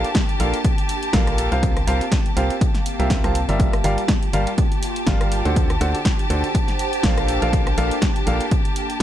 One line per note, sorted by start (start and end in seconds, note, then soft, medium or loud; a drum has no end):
0.00 5.56 A#3 medium
0.00 2.42 D4 medium
0.00 3.58 G4 medium
0.00 0.31 C5 medium
0.00 3.59 A5 medium
0.04 closed hi-hat medium
0.15 kick loud
0.15 snare loud
0.15 closed hi-hat medium
0.20 2.42 A5 medium
0.29 closed hi-hat soft
0.40 0.54 A#1 medium
0.40 0.56 A#3 medium
0.40 0.56 F4 medium
0.40 0.56 A4 medium
0.40 0.56 A#4 medium
0.40 0.56 D5 medium
0.40 0.56 F5 medium
0.40 open hi-hat loud
0.54 closed hi-hat medium
0.65 kick loud
0.65 closed hi-hat medium
0.78 closed hi-hat soft
0.89 open hi-hat loud
1.03 closed hi-hat medium
1.13 1.49 A#1 loud
1.13 1.49 A#3 medium
1.13 1.49 F4 medium
1.13 1.49 A4 medium
1.13 1.49 A#4 medium
1.13 1.49 D5 medium
1.13 1.49 F5 medium
1.13 kick loud
1.13 snare loud
1.13 closed hi-hat medium
1.27 cross-stick medium
1.27 closed hi-hat soft
1.38 open hi-hat loud
1.52 1.85 C2 loud
1.52 1.75 C4 medium
1.52 1.75 F4 medium
1.52 1.75 G4 medium
1.52 1.75 A#4 medium
1.52 1.75 C5 medium
1.52 1.75 F5 loud
1.52 closed hi-hat soft
1.63 4.37 C4 medium
1.63 kick loud
1.63 closed hi-hat medium
1.77 cross-stick medium
1.77 closed hi-hat soft
1.87 2.01 C2 loud
1.87 2.03 C4 medium
1.87 2.03 F4 medium
1.87 2.03 G4 medium
1.87 2.03 A#4 medium
1.87 2.03 C5 medium
1.87 2.03 F5 loud
1.87 open hi-hat loud
1.93 4.39 F5 medium
2.01 closed hi-hat medium
2.12 kick loud
2.12 snare loud
2.12 closed hi-hat medium
2.26 closed hi-hat soft
2.37 2.50 C2 medium
2.37 2.52 C4 medium
2.37 2.52 F4 medium
2.37 2.52 G4 medium
2.37 2.52 A#4 medium
2.37 2.52 C5 medium
2.37 2.52 F5 loud
2.37 open hi-hat loud
2.50 closed hi-hat medium
2.61 kick loud
2.61 closed hi-hat medium
2.75 snare soft
2.75 closed hi-hat soft
2.86 open hi-hat loud
2.99 3.21 C2 loud
2.99 3.21 C4 medium
2.99 3.21 F4 medium
2.99 3.21 G4 medium
2.99 3.21 A#4 medium
2.99 3.21 C5 medium
2.99 3.21 E5 loud
2.99 closed hi-hat soft
3.10 kick loud
3.10 snare loud
3.10 closed hi-hat medium
3.24 3.46 C2 loud
3.24 3.38 C4 medium
3.24 3.38 F4 medium
3.24 3.38 G4 medium
3.24 3.38 A#4 medium
3.24 3.38 C5 medium
3.24 3.38 A5 medium
3.24 cross-stick medium
3.24 closed hi-hat soft
3.35 open hi-hat loud
3.49 3.82 G1 loud
3.49 3.72 G3 medium
3.49 3.72 F4 medium
3.49 3.72 G4 medium
3.49 3.72 A#4 medium
3.49 3.72 D5 medium
3.49 3.72 E5 loud
3.49 closed hi-hat soft
3.60 5.56 F4 medium
3.60 9.03 G4 medium
3.60 9.03 A5 medium
3.60 kick loud
3.60 closed hi-hat medium
3.73 cross-stick medium
3.73 closed hi-hat soft
3.84 3.98 G1 loud
3.84 4.00 G3 medium
3.84 4.00 F4 medium
3.84 4.00 G4 medium
3.84 4.00 A#4 medium
3.84 4.00 D5 medium
3.84 4.00 F5 loud
3.84 open hi-hat loud
3.98 5.56 G5 medium
3.98 closed hi-hat medium
4.08 kick loud
4.08 snare loud
4.08 closed hi-hat medium
4.23 closed hi-hat soft
4.33 4.47 G1 loud
4.33 4.49 G3 medium
4.33 4.49 F4 medium
4.33 4.49 G4 medium
4.33 4.49 A#4 medium
4.33 4.49 D5 medium
4.33 4.49 F5 loud
4.33 open hi-hat loud
4.47 closed hi-hat medium
4.58 kick loud
4.58 closed hi-hat medium
4.72 closed hi-hat soft
4.83 open hi-hat loud
4.96 closed hi-hat medium
5.07 5.43 G1 loud
5.07 5.42 G3 medium
5.07 5.42 F4 medium
5.07 5.42 G4 medium
5.07 5.42 A#4 medium
5.07 5.42 D5 medium
5.07 5.42 F5 medium
5.07 kick loud
5.07 snare loud
5.07 closed hi-hat medium
5.21 cross-stick medium
5.21 closed hi-hat soft
5.32 open hi-hat loud
5.45 5.79 D2 medium
5.45 5.69 D3 medium
5.45 5.69 F#4 medium
5.45 5.69 A4 medium
5.45 5.69 C5 medium
5.45 5.69 D5 medium
5.45 5.69 F#5 medium
5.45 closed hi-hat soft
5.56 9.03 D4 medium
5.56 kick loud
5.56 closed hi-hat medium
5.70 cross-stick medium
5.70 closed hi-hat soft
5.81 5.95 D2 loud
5.81 5.97 D3 medium
5.81 5.97 F#4 medium
5.81 5.97 A4 medium
5.81 5.97 C5 medium
5.81 5.97 D5 medium
5.81 5.97 F#5 loud
5.81 open hi-hat loud
5.95 closed hi-hat medium
6.03 8.15 C5 medium
6.03 kick loud
6.03 snare loud
6.03 closed hi-hat medium
6.19 closed hi-hat soft
6.30 6.44 D2 loud
6.30 6.46 D3 medium
6.30 6.46 F#4 medium
6.30 6.46 A4 medium
6.30 6.46 C5 medium
6.30 6.46 D5 medium
6.30 6.46 F#5 medium
6.30 open hi-hat medium
6.34 7.29 F#5 medium
6.44 closed hi-hat medium
6.55 kick loud
6.55 closed hi-hat medium
6.68 snare soft
6.68 closed hi-hat soft
6.79 open hi-hat loud
6.93 closed hi-hat medium
7.03 7.39 A#1 loud
7.03 7.39 A#3 medium
7.03 7.39 F4 medium
7.03 7.39 A4 medium
7.03 7.39 A#4 medium
7.03 7.39 D5 medium
7.03 7.39 F5 medium
7.03 kick loud
7.03 snare loud
7.03 closed hi-hat medium
7.18 cross-stick medium
7.18 closed hi-hat soft
7.28 open hi-hat loud
7.42 7.75 A#1 medium
7.42 7.65 A#3 medium
7.42 7.65 F4 medium
7.42 7.65 A4 medium
7.42 7.65 A#4 medium
7.42 7.65 D5 medium
7.42 7.65 F5 loud
7.42 closed hi-hat soft
7.53 kick loud
7.53 closed hi-hat medium
7.67 cross-stick medium
7.67 closed hi-hat soft
7.73 9.03 A#3 medium
7.78 7.91 A#1 loud
7.78 7.93 A#3 loud
7.78 7.93 F4 medium
7.78 7.93 A4 medium
7.78 7.93 A#4 medium
7.78 7.93 D5 medium
7.78 7.93 F5 loud
7.78 open hi-hat medium
7.91 closed hi-hat medium
7.96 9.03 A5 medium
8.02 kick loud
8.02 snare loud
8.02 closed hi-hat medium
8.16 closed hi-hat soft
8.27 8.40 A#1 medium
8.27 8.43 A#3 medium
8.27 8.43 F4 medium
8.27 8.43 A4 medium
8.27 8.43 A#4 medium
8.27 8.43 D5 medium
8.27 8.43 F5 loud
8.27 open hi-hat medium
8.41 closed hi-hat medium
8.51 kick loud
8.51 closed hi-hat medium
8.65 closed hi-hat soft
8.76 open hi-hat loud
8.90 closed hi-hat medium